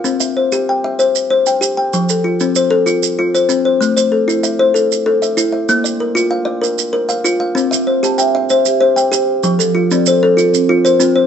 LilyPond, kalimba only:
\new Staff \with { instrumentName = "Kalimba" } { \time 12/8 \key c \mixolydian \tempo 4. = 128 << { f''8 e''8 c''4 g''4 c''4. g''4 g''8~ | g''8 a'8 f'4 c''4 f'4. c''4 c''8~ | c''8 c''8 a'4 e''4 a'4. e''4 e''8~ | e''8 d''8 bes'4 f''4 bes'4. f''4 f''8~ |
f''8 e''8 c''4 g''4 c''4. g''4. | r8 a'8 f'4 c''4 f'4. c''4 c''8 | } \\ { c'4 r8 g'4 e''4 r8 c''4 g'4 | f4 r8 c'4 a'4 r8 f'4 c'4 | a4 r8 e'4 c''4 r8 a'4 e'4 | bes4 r8 f'4 d''4 r8 bes'4 f'4 |
c'4 r8 g'4 e''4 r8 c''4 g'4 | f4 r8 c'4 a'4 r8 f'4 c'4 | } >> }